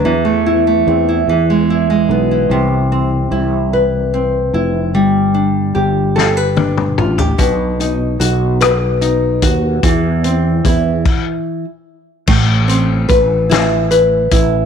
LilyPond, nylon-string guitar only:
\new Staff \with { instrumentName = "Nylon-string guitar" } { \time 6/8 \key a \minor \tempo 4. = 49 e16 a16 e'16 a16 c'16 e'16 e16 gis16 e'16 gis16 b16 e'16 | c8 c'8 e'8 b'8 c'8 e'8 | g8 d'8 g'8 a'16 b'16 d'8 f'16 g'16 | b,8 dis'8 fis'8 b'8 dis'8 fis'8 |
e8 c'8 e'8 r4. | a,8 c'8 b'8 e'8 b'8 e'8 | }